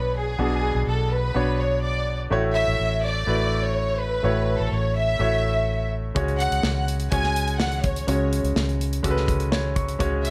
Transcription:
0.00 0.35 B1 medium
0.00 0.39 B2 medium
0.00 0.39 B3 medium
0.00 0.39 D4 medium
0.00 0.40 F#4 medium
0.00 2.33 A4 soft
0.00 0.16 B4 medium
0.00 1.36 C#5 medium
0.00 2.34 F#5 soft
0.18 0.85 G#4 medium
0.39 0.73 B1 medium
0.39 1.08 B2 medium
0.39 1.15 B3 medium
0.39 1.15 D4 medium
0.39 1.15 F#4 medium
0.39 1.16 G#4 medium
0.75 0.86 B1 medium
0.87 1.32 B1 medium
0.87 1.13 A4 medium
1.13 1.60 B4 medium
1.34 2.28 B1 medium
1.34 2.11 B3 medium
1.34 2.11 D4 medium
1.34 2.11 F#4 medium
1.34 2.12 C#5 medium
1.61 1.84 C#5 medium
1.84 2.17 D5 medium
2.30 2.65 A1 medium
2.30 2.99 A2 medium
2.30 3.07 A3 medium
2.30 3.07 E4 medium
2.30 3.07 F#4 medium
2.30 3.08 C#5 medium
2.55 3.00 E5 medium
2.68 2.79 A1 medium
2.80 3.24 A1 medium
3.04 3.64 D5 medium
3.27 4.20 A1 medium
3.27 4.03 A3 medium
3.27 4.03 E4 medium
3.27 4.03 F#4 medium
3.27 4.04 B4 medium
3.65 4.00 C#5 medium
4.00 4.60 B4 medium
4.23 4.57 A1 medium
4.23 4.92 A2 medium
4.23 4.99 A3 medium
4.23 4.99 E4 medium
4.23 5.00 F#4 medium
4.23 5.00 C#5 medium
4.60 4.71 A1 medium
4.60 4.72 A4 medium
4.72 5.17 A1 medium
4.72 4.96 C#5 medium
4.96 5.88 E5 medium
5.19 6.12 A1 medium
5.19 5.95 A3 medium
5.19 5.96 E4 medium
5.19 5.96 F#4 medium
5.19 5.96 C#5 medium
6.15 6.49 C#2 medium
6.15 6.84 C#3 medium
6.15 6.91 G#3 medium
6.15 6.91 C#4 medium
6.15 6.92 F#4 medium
6.15 6.92 C#5 medium
6.15 kick medium
6.15 closed hi-hat medium
6.28 closed hi-hat soft
6.40 6.85 F#5 medium
6.40 closed hi-hat medium
6.51 6.63 C#2 medium
6.51 closed hi-hat soft
6.63 7.08 C#2 medium
6.63 snare medium
6.88 closed hi-hat medium
7.00 closed hi-hat soft
7.11 8.04 C#2 medium
7.11 7.87 G#3 medium
7.11 7.88 C#4 medium
7.11 7.88 F#4 medium
7.11 7.88 C#5 medium
7.11 7.57 G#5 loud
7.11 kick medium
7.11 closed hi-hat medium
7.23 snare soft
7.36 closed hi-hat medium
7.48 closed hi-hat soft
7.60 7.85 F#5 medium
7.60 snare medium
7.72 closed hi-hat soft
7.84 8.32 C#5 medium
7.84 kick medium
7.84 closed hi-hat medium
7.96 closed hi-hat soft
8.07 8.42 C#2 medium
8.07 8.76 C#3 medium
8.07 8.83 G#3 medium
8.07 8.84 C#4 medium
8.07 8.84 F#4 medium
8.07 8.84 C#5 medium
8.07 closed hi-hat medium
8.33 closed hi-hat medium
8.44 8.55 C#2 medium
8.44 closed hi-hat soft
8.56 9.01 C#2 medium
8.56 snare medium
8.69 closed hi-hat soft
8.81 closed hi-hat medium
8.93 closed hi-hat soft
9.03 9.96 C#2 medium
9.03 9.79 G#3 medium
9.03 9.80 C#4 medium
9.03 9.80 F#4 medium
9.03 9.10 A4 medium
9.03 kick medium
9.03 closed hi-hat medium
9.11 9.83 B4 medium
9.17 snare soft
9.28 kick medium
9.28 closed hi-hat medium
9.40 closed hi-hat soft
9.52 9.74 C#5 medium
9.52 snare medium
9.76 9.98 C#6 medium
9.76 kick medium
9.76 closed hi-hat medium
9.89 closed hi-hat soft
9.99 10.30 C#2 medium
9.99 10.30 C#3 medium
9.99 10.30 G#3 medium
9.99 10.30 C#4 medium
9.99 10.30 F#4 medium
9.99 10.30 C#5 medium
9.99 kick medium
9.99 closed hi-hat medium
10.25 10.30 E5 medium
10.25 closed hi-hat medium

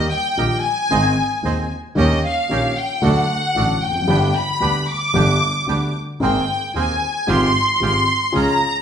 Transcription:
0.00 0.10 D#5 medium
0.10 0.60 G5 medium
0.37 0.60 A#1 medium
0.37 0.61 A#1 soft
0.37 0.60 A#2 medium
0.37 0.60 D#3 soft
0.37 0.60 G3 soft
0.37 0.60 A#3 soft
0.37 0.61 D#4 soft
0.37 0.60 G4 soft
0.37 0.60 G4 medium
0.63 1.70 G#5 loud
0.90 1.13 G#1 medium
0.90 1.14 G#2 medium
0.90 1.13 D#3 medium
0.90 1.13 G#3 medium
0.90 1.13 C4 medium
0.90 1.14 C4 medium
0.90 1.13 D#4 medium
0.90 1.14 G#4 medium
1.43 1.66 D#1 medium
1.43 1.66 D#2 medium
1.43 1.66 D#3 soft
1.43 1.66 G#3 soft
1.43 1.66 C4 soft
1.43 1.67 C4 soft
1.43 1.67 D#4 soft
1.43 1.66 G#4 medium
1.43 1.67 G#4 medium
1.95 2.19 D#2 medium
1.95 2.19 D#3 medium
1.95 2.19 A#3 medium
1.95 2.19 C#4 medium
1.95 2.20 D#4 medium
1.95 2.19 G4 medium
1.95 2.20 G4 medium
1.95 2.22 D#5 medium
2.27 2.78 F5 medium
2.49 2.72 A#1 medium
2.49 2.72 A#2 soft
2.49 2.72 D#3 soft
2.49 2.72 A#3 soft
2.49 2.72 C#4 soft
2.49 2.72 D#4 soft
2.49 2.72 G4 soft
2.49 2.73 G4 medium
2.78 3.03 G5 medium
3.02 3.25 D2 medium
3.02 3.24 D3 medium
3.02 3.25 F#3 medium
3.02 3.24 A3 medium
3.02 3.25 A3 medium
3.02 3.25 D4 medium
3.02 3.25 F#4 medium
3.02 3.82 F#5 loud
3.55 3.78 A1 medium
3.55 3.78 A2 medium
3.55 3.77 D3 soft
3.55 3.78 F#3 soft
3.55 3.78 A3 soft
3.55 3.78 A3 medium
3.55 3.78 D4 soft
3.55 3.78 F#4 medium
3.82 4.08 F1 medium
3.82 4.35 G5 medium
3.89 3.95 E2 soft
3.95 4.02 F2 medium
4.02 4.09 F#2 medium
4.08 4.30 G1 medium
4.08 4.31 G1 medium
4.08 4.30 G2 medium
4.08 4.30 D3 medium
4.08 4.30 G3 medium
4.08 4.30 B3 medium
4.08 4.31 B3 medium
4.08 4.31 D4 medium
4.08 4.30 G4 medium
4.08 4.31 G4 medium
4.36 4.89 B5 loud
4.60 4.84 D2 soft
4.60 4.84 D2 medium
4.60 4.84 D3 medium
4.60 4.83 G3 soft
4.60 4.83 B3 soft
4.60 4.84 B3 medium
4.60 4.84 D4 soft
4.60 4.83 G4 soft
4.60 4.84 G4 medium
4.88 5.95 D6 loud
5.14 5.37 G1 medium
5.14 5.37 G2 medium
5.14 5.37 D3 medium
5.14 5.37 G3 medium
5.14 5.37 B3 medium
5.14 5.37 D4 medium
5.14 5.37 G4 medium
5.67 5.90 D2 medium
5.67 5.90 D3 medium
5.67 5.90 G3 soft
5.67 5.91 B3 soft
5.67 5.91 D4 soft
5.67 5.90 G4 soft
5.67 5.91 G4 soft
6.20 6.44 G#1 medium
6.20 6.43 G#2 medium
6.20 6.43 D#3 medium
6.20 6.43 A#3 medium
6.20 6.44 A#3 medium
6.20 6.44 C4 medium
6.20 6.44 G#4 medium
6.20 6.72 G5 medium
6.74 6.97 D#1 medium
6.74 6.97 D#2 soft
6.74 6.98 D#2 medium
6.74 6.97 D#3 soft
6.74 6.98 A#3 soft
6.74 6.97 C4 soft
6.74 6.98 C4 soft
6.74 6.97 G#4 soft
6.74 6.98 G#4 medium
6.74 7.29 G#5 medium
7.27 7.50 G#1 medium
7.27 7.51 G#1 medium
7.27 7.50 G#2 medium
7.27 7.50 F3 medium
7.27 7.50 G#3 medium
7.27 7.51 G#3 medium
7.27 7.50 C4 medium
7.27 7.51 F4 medium
7.27 7.50 G4 medium
7.27 7.51 G4 medium
7.27 7.82 C6 loud
7.80 8.03 G#1 medium
7.80 8.04 G#1 medium
7.80 8.04 G#2 medium
7.80 8.03 F3 soft
7.80 8.03 G#3 soft
7.80 8.04 G#3 soft
7.80 8.04 C4 soft
7.80 8.04 F4 soft
7.80 8.04 G4 medium
7.80 8.04 G4 soft
7.85 8.33 C6 medium
8.32 8.56 C#2 medium
8.32 8.57 C#2 medium
8.32 8.56 C#3 medium
8.32 8.56 F3 medium
8.32 8.56 G#3 medium
8.32 8.56 C#4 medium
8.32 8.57 C#4 medium
8.32 8.57 F4 medium
8.32 8.56 G#4 medium
8.32 8.57 G#4 medium
8.37 8.82 A#5 loud

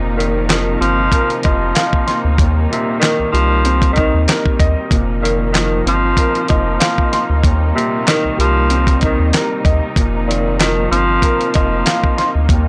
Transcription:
0.00 0.77 F1 loud
0.00 2.39 A#2 medium
0.00 4.88 C3 medium
0.00 2.36 F3 medium
0.00 4.87 A#3 medium
0.00 4.88 D#4 medium
0.17 0.46 A#2 medium
0.17 2.38 D#3 medium
0.17 closed hi-hat medium
0.49 0.77 D#3 medium
0.49 2.39 F3 medium
0.49 snare loud
0.49 clap medium
0.49 closed hi-hat medium
0.81 1.09 G1 loud
0.81 1.40 F3 loud
0.81 2.39 C4 medium
0.81 closed hi-hat medium
1.12 2.39 A#4 loud
1.12 kick medium
1.12 closed hi-hat medium
1.30 closed hi-hat medium
1.43 1.73 F1 medium
1.43 2.35 F3 medium
1.43 2.39 D#5 medium
1.43 kick loud
1.43 closed hi-hat medium
1.75 2.38 F5 loud
1.75 snare loud
1.75 clap loud
1.75 closed hi-hat medium
1.93 kick medium
2.07 2.39 C6 medium
2.07 snare soft
2.07 closed hi-hat medium
2.25 2.37 D2 medium
2.38 2.67 D#2 loud
2.38 4.91 D#2 medium
2.38 4.88 G3 medium
2.38 kick loud
2.38 closed hi-hat medium
2.71 4.90 A#2 medium
2.71 2.99 C3 medium
2.71 closed hi-hat medium
3.00 3.29 D#3 medium
3.00 4.92 D#3 medium
3.00 snare loud
3.00 clap medium
3.00 closed hi-hat medium
3.19 3.25 C2 medium
3.32 4.10 C2 medium
3.32 3.92 F3 loud
3.32 4.91 G3 medium
3.32 closed hi-hat medium
3.65 4.91 C4 loud
3.65 closed hi-hat medium
3.82 kick medium
3.82 closed hi-hat medium
3.93 4.23 D#3 medium
3.93 4.91 D#4 medium
3.93 closed hi-hat medium
3.98 kick loud
4.14 4.27 D#2 medium
4.28 4.91 A#4 loud
4.28 snare loud
4.28 clap medium
4.28 closed hi-hat medium
4.46 kick medium
4.60 4.75 D#2 loud
4.60 4.91 D#5 medium
4.60 kick loud
4.60 closed hi-hat medium
4.91 5.82 F1 loud
4.91 7.44 A#2 medium
4.91 12.68 C3 medium
4.91 7.42 F3 medium
4.91 9.93 A#3 medium
4.91 12.68 D#4 medium
4.91 kick loud
4.91 closed hi-hat medium
5.22 5.51 A#2 medium
5.22 7.44 D#3 medium
5.22 closed hi-hat medium
5.52 5.82 D#3 medium
5.52 7.44 F3 medium
5.52 snare loud
5.52 clap medium
5.52 closed hi-hat medium
5.86 6.14 G1 loud
5.86 6.46 F3 loud
5.86 7.44 C4 medium
5.86 closed hi-hat medium
6.17 7.44 A#4 loud
6.17 kick medium
6.17 closed hi-hat medium
6.35 closed hi-hat medium
6.48 6.78 F1 medium
6.48 7.40 F3 medium
6.48 7.44 D#5 medium
6.48 kick loud
6.48 closed hi-hat medium
6.80 7.44 F5 loud
6.80 snare loud
6.80 clap loud
6.80 closed hi-hat medium
6.98 kick medium
7.12 7.44 C6 medium
7.12 snare soft
7.12 closed hi-hat medium
7.30 7.42 D2 medium
7.44 7.72 D#2 loud
7.44 9.97 D#2 medium
7.44 9.94 G3 medium
7.44 kick loud
7.44 closed hi-hat loud
7.75 9.95 A#2 medium
7.75 8.04 C3 medium
7.75 closed hi-hat medium
8.07 8.36 D#3 medium
8.07 9.97 D#3 medium
8.07 snare loud
8.07 clap medium
8.07 closed hi-hat medium
8.25 8.30 C2 soft
8.38 9.15 C2 medium
8.38 8.99 F3 medium
8.38 9.96 G3 medium
8.38 closed hi-hat medium
8.70 9.97 C4 loud
8.70 closed hi-hat medium
8.87 kick medium
8.87 closed hi-hat medium
9.01 9.32 D#3 medium
9.01 9.96 D#4 medium
9.01 kick loud
9.01 closed hi-hat medium
9.19 9.32 D#2 medium
9.33 9.97 A#4 loud
9.33 snare loud
9.33 clap loud
9.33 closed hi-hat medium
9.65 9.80 D#2 medium
9.65 9.96 D#5 medium
9.65 kick loud
9.65 closed hi-hat medium
9.96 10.87 F1 loud
9.96 12.49 A#2 medium
9.96 12.47 F3 medium
9.96 12.68 A#3 medium
9.96 kick loud
9.96 closed hi-hat loud
10.27 10.56 A#2 medium
10.27 12.49 D#3 medium
10.27 closed hi-hat medium
10.59 10.88 D#3 medium
10.59 12.49 F3 medium
10.59 snare loud
10.59 clap medium
10.59 closed hi-hat medium
10.91 11.19 G1 loud
10.91 11.51 F3 loud
10.91 12.49 C4 medium
10.91 closed hi-hat medium
11.22 12.50 A#4 loud
11.22 kick medium
11.22 closed hi-hat medium
11.41 closed hi-hat medium
11.54 11.83 F1 medium
11.54 12.46 F3 medium
11.54 12.49 D#5 medium
11.54 kick loud
11.54 closed hi-hat medium
11.86 12.49 F5 loud
11.86 snare loud
11.86 clap loud
11.86 closed hi-hat medium
12.04 kick medium
12.18 12.49 C6 medium
12.18 snare soft
12.18 closed hi-hat medium
12.35 12.48 D2 medium
12.49 12.68 D#2 loud
12.49 12.68 D#2 medium
12.49 12.68 G3 medium
12.49 kick loud
12.49 closed hi-hat loud

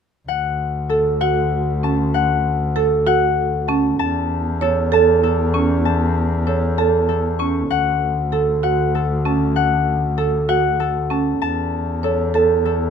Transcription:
0.28 3.89 D2 medium
0.28 1.19 F#5 medium
0.89 2.75 A4 medium
0.89 1.10 A4 medium
1.21 1.41 F#4 medium
1.21 2.13 F#5 medium
1.83 2.03 C#4 medium
1.83 3.67 A5 medium
2.14 3.05 F#5 medium
2.76 4.61 A4 medium
2.76 2.96 A4 medium
3.07 3.27 F#4 medium
3.07 4.01 F#5 medium
3.68 3.89 C#4 medium
3.68 3.98 A5 medium
3.99 7.60 E2 medium
3.99 4.92 A5 medium
4.61 5.22 A4 medium
4.61 4.81 C#5 medium
4.92 5.12 A4 medium
4.92 5.84 A5 medium
5.23 6.45 A4 medium
5.54 5.74 C#4 medium
5.54 7.38 C#6 medium
5.85 6.77 A5 medium
6.47 7.07 A4 medium
6.47 6.67 C#5 soft
6.78 6.98 A4 medium
6.78 9.24 A5 medium
7.09 8.31 A4 soft
7.39 7.60 C#4 medium
7.39 11.29 C#6 soft
7.70 11.31 D2 medium
7.70 8.62 F#5 medium
8.32 8.52 A4 medium
8.32 8.94 A4 medium
8.63 8.83 F#4 medium
8.63 9.55 F#5 medium
8.95 10.16 A4 medium
9.25 9.45 C#4 medium
9.25 11.09 A5 medium
9.56 10.47 F#5 medium
10.18 10.79 A4 medium
10.18 10.38 A4 medium
10.49 10.69 F#4 medium
10.49 11.43 F#5 medium
10.80 12.03 A4 medium
11.10 11.31 C#4 medium
11.10 11.40 A5 medium
11.41 12.90 E2 medium
11.41 12.34 A5 medium
12.03 12.64 A4 medium
12.03 12.24 C#5 medium
12.34 12.54 A4 medium
12.34 12.90 A5 medium
12.65 12.90 A4 medium

